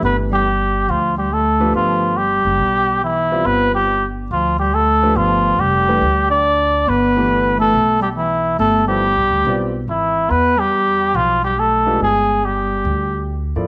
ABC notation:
X:1
M:4/4
L:1/8
Q:"Swing" 1/4=140
K:Gmix
V:1 name="Muted trumpet"
B G3 F G A2 | F2 G4 E2 | B G2 z F G A2 | F2 G3 d3 |
B3 A2 G E2 | A G4 z E2 | B G3 F G A2 | _A2 G4 z2 |]
V:2 name="Grand piano"
[E,A,DGB]2 z4 z [F,A,DGB]- | [F,A,DGB]2 z4 z [G,CFBd]- | [G,CFBd]2 z4 z [F,A,DGB]- | [F,A,DGB]2 z [E,A,DGB] z4 |
z [E,A,DGB]3 z4 | z [F,B,EAc] z2 [G,CFBd] z3 | z6 z [_A,DFGB] | z6 z [F,_B,EAd] |]
V:3 name="Bass clarinet" clef=bass
B, G,3 F, G, A,2 | F,2 G,4 E,2 | B, G,2 z F, G, A,2 | F,2 G,3 D3 |
B,3 A,2 G, E,2 | A, G,4 z E,2 | B, G,3 F, G, A,2 | _A,2 G,4 z2 |]
V:4 name="Upright bass" clef=bass
G,,,4 D,,4 | G,,,3 ^F,,, B,,,4 | G,,,4 D,,4 | G,,,2 F,,,2 D,,4 |
G,,,4 B,,,4 | G,,,2- (3G,,, B,,, D,, B,,,2 _A,,,2 | E,,4 B,,,4 | G,,,4 D,,3 G,, |]